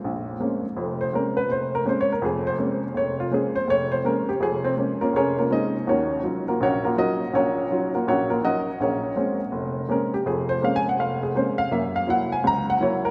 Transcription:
X:1
M:4/4
L:1/8
Q:"Swing" 1/4=164
K:Bbm
V:1 name="Upright piano"
z4 z c B _c | c B (3c d B A c z2 | d F A c d c B =G | A C z [B,DFB] [DABd] [B,DFB] [Ee]2 |
[DGBd]3 [B,FGB] [DGBd] [B,FGB] [GBe]2 | [DGBd]3 [B,FGB] [DGBd] [B,FGB] [GBe]2 | [DABd]3 z3 B =G | A c (3f a g f A c f |
_f =f g a b g d B |]
V:2 name="Upright piano"
B,,,2 [A,B,CD] z [F,,,F,,]2 [A,B,CD] z | F,,,2 [A,B,CD] z [F,,,F,,]2 [A,B,CD] z | F,,,2 [A,B,CD] z F,,,2 [A,B,CD] z | [F,,,F,,]2 [A,B,CD] z F,,,2 [A,B,CD] z |
[E,,E,]2 [G,DEF] z B,,,2 [G,DEF] z | [B,,,B,,]2 [G,DEF] z B,,,2 [G,DEF] z | B,,,2 [A,B,CD] z F,,,2 [A,B,CD] z | [F,,,F,,]2 [A,B,CD] z F,,,2 [A,B,CD] z |
[G,,B,]2 [G,B,_F] z D,,2 [G,B,F] z |]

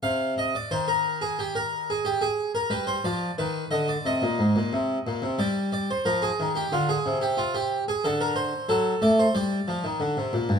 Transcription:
X:1
M:4/4
L:1/16
Q:1/4=90
K:Cm
V:1 name="Harpsichord"
f2 e d c B2 A G B2 A G A2 B | =B c d2 B2 e d e8 | d2 d c B A2 G F A2 G F G2 A | =A B c2 A2 d c d8 |]
V:2 name="Harpsichord" clef=bass
C,4 E,12 | G,2 F,2 E,2 D,2 C, B,, A,, B,, C,2 B,, C, | G,4 F,2 E,2 D,2 C,6 | D,4 ^F,2 =A,2 G,2 =F, E, D, C, B,, G,, |]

